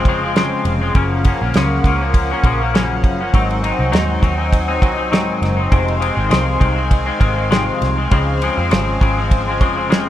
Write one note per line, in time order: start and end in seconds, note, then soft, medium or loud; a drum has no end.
0.00 3.30 C#3 medium
0.00 0.93 C5 medium
0.00 3.29 F5 medium
0.00 0.90 G#5 loud
0.05 0.53 F1 loud
0.05 0.23 C#3 medium
0.05 0.23 F3 medium
0.05 0.22 C4 medium
0.05 kick loud
0.05 ride medium
0.09 0.23 G#3 medium
0.23 0.36 F3 soft
0.23 0.36 G#3 medium
0.23 0.36 C4 medium
0.36 0.82 C#3 medium
0.36 0.82 F3 medium
0.36 0.81 G#3 loud
0.36 0.80 C4 loud
0.36 snare loud
0.36 ride medium
0.65 0.89 F1 medium
0.65 ride medium
0.81 0.95 F3 medium
0.81 0.95 G#3 medium
0.81 0.95 C4 medium
0.95 1.32 F#1 medium
0.95 1.25 F#2 medium
0.95 1.23 C#3 loud
0.95 1.24 F3 medium
0.95 1.25 A#3 medium
0.95 1.25 C#4 medium
0.95 3.32 A#4 medium
0.95 5.70 F#5 loud
0.95 kick loud
0.95 ride medium
1.24 1.41 C#3 medium
1.24 1.41 F3 medium
1.24 1.42 A#3 medium
1.24 1.40 C#4 medium
1.24 kick loud
1.24 ride medium
1.42 1.52 A#1 medium
1.42 1.55 F3 soft
1.42 1.55 A#3 medium
1.42 1.55 C#4 medium
1.54 1.78 C#2 medium
1.54 1.85 F#2 medium
1.54 1.83 C#3 loud
1.54 1.84 F3 loud
1.54 1.85 A#3 loud
1.54 1.86 C#4 loud
1.54 snare loud
1.54 ride medium
1.84 2.32 C#2 loud
1.84 2.01 C#3 medium
1.84 2.01 F3 medium
1.84 2.01 A#3 medium
1.84 2.00 C#4 medium
1.84 kick medium
1.84 ride medium
2.01 2.32 F3 soft
2.01 2.31 A#3 medium
2.01 2.30 C#4 medium
2.14 kick medium
2.14 ride medium
2.31 2.44 F3 soft
2.31 2.45 A#3 medium
2.31 2.45 C#4 medium
2.43 3.03 A#1 medium
2.43 2.61 C#3 medium
2.43 2.61 F3 medium
2.43 2.61 A#3 medium
2.43 2.60 C#4 medium
2.43 kick medium
2.43 ride medium
2.61 2.74 F3 soft
2.61 2.74 A#3 soft
2.61 2.74 C#4 medium
2.74 3.21 F#2 loud
2.74 3.20 C#3 loud
2.74 3.21 F3 medium
2.74 3.20 A#3 medium
2.74 3.19 C#4 loud
2.74 snare loud
2.74 ride medium
3.03 3.28 F#1 medium
3.03 kick medium
3.03 ride medium
3.21 3.34 F3 soft
3.21 3.34 A#3 medium
3.21 3.34 C#4 medium
3.31 3.71 G#1 loud
3.31 3.63 G#2 medium
3.31 3.61 D#3 medium
3.31 3.62 F#3 loud
3.31 3.63 C4 loud
3.31 8.06 D#4 medium
3.31 3.64 D#4 loud
3.31 8.07 C5 medium
3.31 5.69 G#5 loud
3.31 kick loud
3.31 ride medium
3.50 ride soft
3.62 3.80 D#3 medium
3.62 3.80 F#3 medium
3.62 3.79 C4 medium
3.62 3.78 D#4 medium
3.62 ride medium
3.79 3.90 C2 loud
3.79 3.91 F#3 soft
3.79 3.91 C4 medium
3.79 3.91 D#4 medium
3.91 4.17 D#2 medium
3.91 4.22 G#2 medium
3.91 4.20 D#3 medium
3.91 4.21 F#3 medium
3.91 4.22 C4 medium
3.91 4.22 D#4 loud
3.91 snare loud
3.91 ride medium
4.21 4.82 D#2 medium
4.21 4.39 D#3 medium
4.21 4.38 F#3 medium
4.21 4.38 C4 medium
4.21 4.37 D#4 medium
4.21 kick medium
4.21 ride medium
4.38 4.69 F#3 medium
4.38 4.67 C4 medium
4.38 4.67 D#4 medium
4.53 kick medium
4.53 ride medium
4.68 4.81 F#3 soft
4.68 4.81 C4 medium
4.68 4.82 D#4 medium
4.81 5.30 C2 medium
4.81 4.99 D#3 medium
4.81 4.97 F#3 medium
4.81 4.96 C4 medium
4.81 4.95 D#4 medium
4.81 kick medium
4.81 ride medium
4.97 5.11 F#3 soft
4.97 5.12 C4 medium
4.97 5.12 D#4 medium
5.11 5.59 G#2 loud
5.11 5.59 D#3 loud
5.11 5.58 F#3 loud
5.11 5.57 C4 loud
5.11 5.56 D#4 loud
5.11 snare loud
5.11 ride medium
5.42 5.66 F#1 medium
5.42 snare soft
5.42 ride medium
5.57 5.71 F#3 soft
5.57 5.71 C4 medium
5.57 5.72 D#4 medium
5.71 6.09 F1 loud
5.71 6.02 F2 medium
5.71 5.99 C3 medium
5.71 5.99 D#3 medium
5.71 6.00 G#3 medium
5.71 6.00 C4 medium
5.71 10.09 F5 medium
5.71 8.09 G#5 loud
5.71 kick loud
5.71 ride medium
5.88 ride soft
6.00 6.18 C3 medium
6.00 6.16 D#3 medium
6.00 6.15 G#3 medium
6.00 6.14 C4 medium
6.00 ride medium
6.15 6.29 G#1 loud
6.15 6.29 D#3 soft
6.15 6.30 G#3 medium
6.15 6.30 C4 medium
6.29 6.56 C2 loud
6.29 6.61 F2 medium
6.29 6.57 C3 medium
6.29 6.58 D#3 medium
6.29 6.59 G#3 medium
6.29 6.59 C4 loud
6.29 snare loud
6.29 ride medium
6.58 7.09 C2 loud
6.58 6.77 C3 medium
6.58 6.77 D#3 medium
6.58 6.75 G#3 medium
6.58 6.74 C4 medium
6.58 kick medium
6.58 ride medium
6.76 7.07 D#3 medium
6.76 7.06 G#3 medium
6.76 7.05 C4 medium
6.91 kick medium
6.91 ride medium
7.06 7.19 D#3 medium
7.06 7.19 G#3 medium
7.06 7.20 C4 medium
7.19 7.69 G#1 loud
7.19 7.37 C3 medium
7.19 7.37 D#3 medium
7.19 7.36 G#3 medium
7.19 7.35 C4 medium
7.19 kick medium
7.19 ride medium
7.36 7.50 D#3 soft
7.36 7.51 G#3 medium
7.36 7.51 C4 medium
7.50 7.98 F2 loud
7.50 7.98 C3 loud
7.50 7.98 D#3 loud
7.50 7.97 G#3 loud
7.50 7.97 C4 loud
7.50 snare loud
7.50 ride medium
7.82 8.06 C2 medium
7.82 snare soft
7.82 ride medium
7.98 8.12 D#3 soft
7.98 8.11 G#3 medium
7.98 8.12 C4 medium
8.11 8.49 C#2 loud
8.11 8.41 C#3 loud
8.11 10.09 C#3 medium
8.11 8.41 F3 medium
8.11 8.42 G#3 medium
8.11 8.42 C4 loud
8.11 10.09 C5 medium
8.11 10.09 G#5 loud
8.11 kick loud
8.11 ride medium
8.42 8.58 C#3 medium
8.42 8.59 F3 medium
8.42 8.58 G#3 medium
8.42 8.56 C4 medium
8.42 ride medium
8.57 8.69 F2 loud
8.57 8.70 F3 medium
8.57 8.70 G#3 medium
8.57 8.71 C4 medium
8.71 8.96 G#1 loud
8.71 8.99 C#3 medium
8.71 9.01 F3 medium
8.71 9.01 G#3 loud
8.71 9.02 C4 loud
8.71 snare loud
8.71 ride medium
9.01 9.61 G#1 loud
9.01 9.17 C#3 medium
9.01 9.18 F3 medium
9.01 9.18 G#3 medium
9.01 9.17 C4 medium
9.01 kick loud
9.01 ride medium
9.18 9.49 F3 medium
9.18 9.48 G#3 medium
9.18 9.46 C4 medium
9.31 kick loud
9.31 ride medium
9.48 9.60 F3 soft
9.48 9.61 G#3 medium
9.48 9.61 C4 medium
9.60 10.09 F1 loud
9.60 9.77 C#3 medium
9.60 9.77 F3 medium
9.60 9.77 G#3 medium
9.60 9.75 C4 medium
9.60 kick medium
9.60 ride medium
9.76 9.89 F3 medium
9.76 9.89 G#3 medium
9.76 9.90 C4 medium
9.89 10.09 C#3 medium
9.89 10.09 F3 medium
9.89 10.09 G#3 loud
9.89 10.09 C4 loud
9.89 snare loud
9.89 ride medium